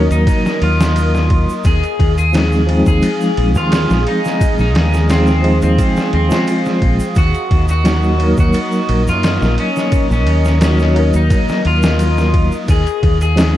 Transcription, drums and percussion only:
0.11 ride, shaker
0.27 kick, ride, shaker
0.46 snare, shaker
0.62 ride
0.81 snare, shaker
0.96 ride, shaker
1.15 snare, shaker
1.30 kick, ride
1.49 shaker
1.64 kick, ride, shaker
1.83 ride, shaker
1.99 kick, ride
2.18 ride, shaker
2.33 snare, ride, shaker
2.52 shaker
2.69 ride
2.86 kick, shaker
3.02 ride, shaker
3.21 shaker
3.37 ride
3.55 shaker
3.72 snare, ride, shaker
3.90 snare, shaker
4.07 ride
4.25 snare, shaker
4.41 kick, ride, shaker
4.58 shaker
4.75 snare, ride
4.94 snare, shaker
5.09 snare, ride, shaker
5.27 snare, shaker
5.44 ride
5.62 ride, shaker
5.78 kick, ride, shaker
5.96 snare, shaker
6.13 ride
6.31 snare, shaker
6.47 ride, shaker
6.66 snare, shaker
6.82 kick, ride
7.00 shaker
7.15 kick, ride, shaker
7.34 ride, shaker
7.51 kick, ride
7.68 ride, shaker
7.85 snare, ride, shaker
8.03 shaker
8.20 ride
8.37 kick, shaker
8.53 ride, shaker
8.72 shaker
8.89 ride
9.07 shaker
9.23 snare, ride, shaker
9.42 snare, shaker
9.58 ride
9.76 snare, shaker
9.92 kick, ride, shaker
10.11 shaker
10.27 ride
10.45 snare, shaker
10.61 snare, ride, shaker
10.79 snare, shaker
10.96 ride
11.13 ride, shaker
11.30 kick, ride, shaker
11.49 snare, shaker
11.65 ride
11.83 snare, shaker
11.99 ride, shaker
12.18 snare, shaker
12.34 kick, ride
12.52 shaker
12.68 kick, ride, shaker
12.87 ride, shaker
13.03 kick, ride
13.21 ride, shaker
13.37 snare, ride, shaker

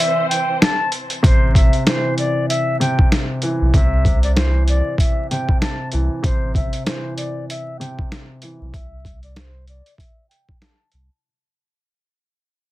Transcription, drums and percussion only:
0.00 closed hi-hat
0.31 closed hi-hat
0.62 snare, closed hi-hat
0.92 closed hi-hat
1.10 closed hi-hat
1.24 kick, closed hi-hat
1.55 kick, closed hi-hat
1.73 closed hi-hat
1.87 snare, closed hi-hat
2.18 closed hi-hat
2.50 closed hi-hat
2.81 closed hi-hat
2.99 kick
3.12 snare, closed hi-hat
3.42 closed hi-hat
3.74 kick, closed hi-hat
4.05 kick, closed hi-hat
4.23 closed hi-hat
4.37 snare, closed hi-hat
4.68 closed hi-hat
4.98 kick, closed hi-hat
5.31 closed hi-hat
5.49 kick
5.62 snare, closed hi-hat
5.92 closed hi-hat
6.24 kick, closed hi-hat
6.55 kick, closed hi-hat
6.73 closed hi-hat
6.86 snare, closed hi-hat
7.18 closed hi-hat
7.50 closed hi-hat
7.81 closed hi-hat
7.99 kick
8.12 snare, closed hi-hat
8.42 closed hi-hat
8.74 kick, closed hi-hat
9.05 kick, closed hi-hat
9.23 closed hi-hat
9.36 snare, closed hi-hat
9.67 closed hi-hat
9.86 closed hi-hat
9.98 kick, closed hi-hat
10.31 closed hi-hat
10.49 kick
10.62 snare, closed hi-hat
10.92 closed hi-hat

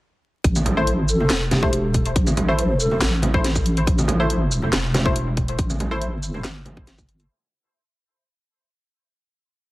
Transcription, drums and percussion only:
0.44 kick, closed hi-hat
0.56 high conga, shaker
0.66 closed hi-hat, low conga
0.87 closed hi-hat
1.09 shaker
1.20 high conga
1.30 snare, clap, closed hi-hat
1.51 snare, closed hi-hat, high conga, low conga
1.63 kick
1.73 closed hi-hat
1.94 kick, closed hi-hat
2.06 closed hi-hat
2.16 kick, closed hi-hat
2.27 high conga, shaker
2.37 closed hi-hat, low conga
2.59 closed hi-hat
2.80 shaker
2.91 high conga
3.02 snare, clap, closed hi-hat
3.22 closed hi-hat, high conga, low conga
3.34 kick
3.44 snare, closed hi-hat
3.55 kick, shaker
3.66 closed hi-hat
3.77 closed hi-hat
3.87 kick, closed hi-hat
3.98 high conga, shaker
4.08 closed hi-hat, low conga
4.30 closed hi-hat
4.52 shaker
4.62 high conga
4.73 snare, clap, closed hi-hat
4.94 snare, closed hi-hat, high conga, low conga
5.06 kick
5.16 closed hi-hat
5.37 kick, closed hi-hat
5.48 closed hi-hat
5.59 kick, closed hi-hat
5.70 high conga, shaker
5.80 closed hi-hat, low conga
6.02 closed hi-hat
6.23 shaker
6.34 high conga
6.44 snare, clap, closed hi-hat
6.65 closed hi-hat, high conga, low conga
6.77 kick
6.87 snare, closed hi-hat
6.98 kick, shaker
7.09 closed hi-hat
7.20 closed hi-hat

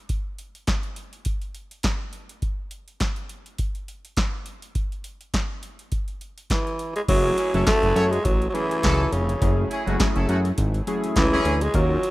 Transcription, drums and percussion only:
0.09 kick, closed hi-hat
0.38 closed hi-hat
0.55 closed hi-hat
0.67 kick, snare, clap, closed hi-hat
0.83 closed hi-hat
0.96 closed hi-hat
1.13 closed hi-hat
1.25 kick, closed hi-hat
1.42 closed hi-hat
1.55 closed hi-hat
1.71 closed hi-hat
1.83 kick, snare, clap, closed hi-hat
2.13 closed hi-hat
2.29 closed hi-hat
2.42 kick, closed hi-hat
2.71 closed hi-hat
2.88 closed hi-hat
3.00 kick, snare, clap, closed hi-hat
3.16 closed hi-hat
3.29 closed hi-hat
3.46 closed hi-hat
3.58 kick, closed hi-hat
3.75 closed hi-hat
3.88 closed hi-hat
4.05 closed hi-hat
4.17 kick, snare, clap, closed hi-hat
4.46 closed hi-hat
4.62 closed hi-hat
4.75 kick, closed hi-hat
4.92 closed hi-hat
5.04 closed hi-hat
5.21 closed hi-hat
5.34 kick, snare, clap, closed hi-hat
5.63 closed hi-hat
5.79 closed hi-hat
5.92 kick, closed hi-hat
6.08 closed hi-hat
6.21 closed hi-hat
6.38 closed hi-hat
6.50 kick, snare, clap, closed hi-hat
6.67 closed hi-hat
6.79 closed hi-hat
6.96 closed hi-hat
7.08 kick, closed hi-hat, crash
7.38 closed hi-hat
7.54 closed hi-hat
7.67 kick, snare, clap, closed hi-hat
7.83 closed hi-hat
7.96 closed hi-hat
8.13 closed hi-hat
8.25 kick, closed hi-hat
8.42 closed hi-hat
8.55 closed hi-hat
8.71 closed hi-hat
8.83 kick, snare, clap, closed hi-hat
9.12 closed hi-hat
9.29 closed hi-hat
9.42 kick, closed hi-hat
9.71 closed hi-hat
9.87 closed hi-hat
10.00 kick, snare, clap, closed hi-hat
10.16 closed hi-hat
10.29 closed hi-hat
10.45 closed hi-hat
10.58 kick, closed hi-hat
10.74 closed hi-hat
10.87 closed hi-hat
11.04 closed hi-hat
11.16 kick, snare, clap, closed hi-hat
11.45 closed hi-hat
11.61 closed hi-hat
11.74 kick, closed hi-hat
12.03 closed hi-hat

